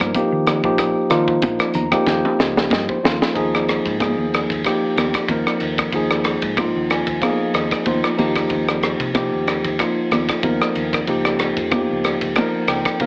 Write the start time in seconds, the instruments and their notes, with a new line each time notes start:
Already playing: tine electric piano F3 A#3 D#4 A#4
0.00 fingered electric bass G2, kick, cross-stick, closed hi-hat
0.14 tine electric piano F3 A#3 D#4 G4, kick, closed hi-hat, high conga
0.32 fingered electric bass D#3
0.47 cross-stick, closed hi-hat
0.64 fingered electric bass A#1, tine electric piano F3 A#3 D#4 G4, kick
0.78 kick, cross-stick, closed hi-hat, muted conga
1.10 fingered electric bass D#3, tine electric piano F3 A#3 D#4 F4, cross-stick, closed hi-hat
1.28 kick
1.42 fingered electric bass A#1, kick, closed hi-hat, muted conga, high conga, low conga
1.59 muted fingered electric bass stroke, cross-stick, closed hi-hat
1.74 fingered electric bass D#2, tine electric piano A#5, closed hi-hat, high conga, low conga
1.91 tine electric piano F3 A#3 D#4 G4 G5, kick, cross-stick
2.06 fingered electric bass D#2, tine electric piano G5, kick, snare, muted conga
2.25 high tom
2.39 fingered electric bass C#2, tine electric piano D#5, snare, muted conga
2.57 snare
2.70 fingered electric bass G2, tine electric piano D#5, kick, snare, high conga
2.89 tine electric piano C5, kick
3.03 fingered electric bass D#2, tine electric piano F3 A#3 D#4 F4, snare
3.22 snare
3.34 fingered electric bass D#2, tine electric piano F3 A#3 D#4 G#4, kick, ride, muted conga
3.55 cross-stick
3.69 cross-stick, ride
3.85 fingered electric bass G#2, kick, ride
3.99 tine electric piano F3 A#3 D#4 G#4, kick, cross-stick, ride, high conga
4.18 fingered electric bass D#2
4.34 cross-stick, ride
4.50 fingered electric bass D#2, kick, ride
4.64 tine electric piano F3 A#3 D#4 G4, kick, cross-stick, ride, muted conga
4.83 muted fingered electric bass stroke
4.96 fingered electric bass D#2, cross-stick, ride, muted conga, high conga
5.14 kick, cross-stick, ride
5.28 fingered electric bass D#2, tine electric piano F3 A#3 D#4 A#4, kick, ride, high conga
5.47 cross-stick
5.60 fingered electric bass D#2, ride
5.78 kick, cross-stick, ride
5.92 fingered electric bass D#2, tine electric piano F3 A#3 D#4 G#4, kick, ride, muted conga
6.11 cross-stick
6.24 cross-stick, ride
6.42 fingered electric bass G#2, kick, ride
6.57 tine electric piano F3 A#3 D#4 F4, kick, cross-stick, ride, high conga
6.75 fingered electric bass D#2
6.90 tine electric piano G#5, cross-stick, ride
7.06 fingered electric bass D#2, kick, ride
7.21 tine electric piano F3 A#3 D#4 G#4 F5, kick, cross-stick, ride, muted conga, high conga
7.41 muted fingered electric bass stroke
7.54 fingered electric bass D#2, tine electric piano D#5, cross-stick, ride, muted conga
7.71 kick, cross-stick, ride
7.85 fingered electric bass D#2, tine electric piano F3 A#3 D#4 F4 C5, kick, ride, high conga
8.04 cross-stick
8.17 fingered electric bass D#2, tine electric piano F3 A#3 D#4 G4, ride, muted conga, high conga
8.36 kick, cross-stick, ride
8.50 fingered electric bass D#2, kick, ride, muted conga
8.69 cross-stick
8.83 cross-stick, ride
9.00 fingered electric bass C3, kick, ride
9.14 tine electric piano F3 A#3 D#4 G4, kick, cross-stick, ride, high conga
9.33 fingered electric bass D#2
9.47 cross-stick, ride
9.65 fingered electric bass D#2, kick, ride
9.79 tine electric piano F3 A#3 D#4 F4, kick, cross-stick, ride, muted conga
9.97 muted fingered electric bass stroke
10.11 fingered electric bass D#2, cross-stick, ride, muted conga, high conga
10.29 kick, cross-stick, ride
10.43 fingered electric bass D#2, tine electric piano F3 A#3 D#4 A#4, kick, ride, high conga
10.62 cross-stick
10.75 fingered electric bass D#2, ride, muted conga
10.93 kick, cross-stick, ride
11.07 fingered electric bass C#2, tine electric piano F3 A#3 D#4 G4, kick, ride, muted conga
11.25 cross-stick
11.39 cross-stick, ride
11.57 fingered electric bass F2, kick, ride
11.71 tine electric piano F3 A#3 D#4 G4, kick, cross-stick, ride, high conga
11.91 fingered electric bass C#2
12.04 cross-stick, ride
12.21 fingered electric bass C#2, kick, ride
12.35 tine electric piano F3 A#3 D#4 A#4, kick, cross-stick, ride, muted conga, high conga
12.54 muted fingered electric bass stroke
12.68 fingered electric bass C#2, tine electric piano G5, cross-stick, ride, muted conga
12.85 kick, cross-stick, ride
13.00 fingered electric bass C#2, tine electric piano F3 A#3 D#4 A#4 F5, kick, ride, high conga